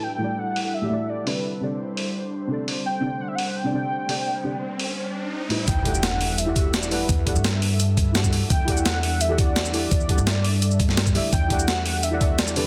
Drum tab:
HH |------o-------o-|------o-------o-|------o-------o-|------o-------o-|
SH |----------------|----------------|----------------|----------------|
SD |----------------|----------------|----------------|----------------|
BD |----------------|----------------|----------------|----------------|

HH |x-x-x-o-x-x-x-o-|x-x-x-o-x-x-x-o-|x-x-x-o-x-x-x-o-|x-x-x-o-x-x-x-o-|
SH |x--xx---x-x-xxx-|x--xx---x-x-xxx-|x--xx---x-x-xxx-|xx-xx---xxx-xxx-|
SD |----o-------o---|----o-------o---|----o-------o---|----o------oo---|
BD |o-o-------o-----|o-o-------o--o--|o-o-------o-----|o-o-------o--o--|

HH |x-x-x-o-x-x-x-o-|
SH |x--xx---x-x-xxx-|
SD |----o-------o---|
BD |o-o-------o-----|